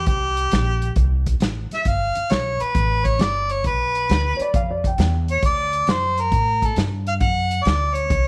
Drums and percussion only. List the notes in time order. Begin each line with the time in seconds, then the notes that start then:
0.06 kick, closed hi-hat
0.37 closed hi-hat
0.51 snare, closed hi-hat
0.82 closed hi-hat
0.96 kick, closed hi-hat
1.26 kick, closed hi-hat
1.40 snare, closed hi-hat
1.71 snare, closed hi-hat
1.85 kick, closed hi-hat
2.15 closed hi-hat
2.30 snare, closed hi-hat
2.60 closed hi-hat
2.75 kick, closed hi-hat
3.05 kick, closed hi-hat
3.19 snare, closed hi-hat
3.50 closed hi-hat
3.64 kick, closed hi-hat
3.95 closed hi-hat
4.09 snare, closed hi-hat
4.40 closed hi-hat
4.54 kick, closed hi-hat
4.84 kick, closed hi-hat
4.98 snare, closed hi-hat
5.28 closed hi-hat
5.43 kick, closed hi-hat
5.73 closed hi-hat
5.87 snare, closed hi-hat
6.17 closed hi-hat
6.32 kick, closed hi-hat
6.62 kick, closed hi-hat
6.76 snare, closed hi-hat
7.07 closed hi-hat
7.20 kick, closed hi-hat
7.51 closed hi-hat
7.65 snare, closed hi-hat
7.95 closed hi-hat
8.10 kick, closed hi-hat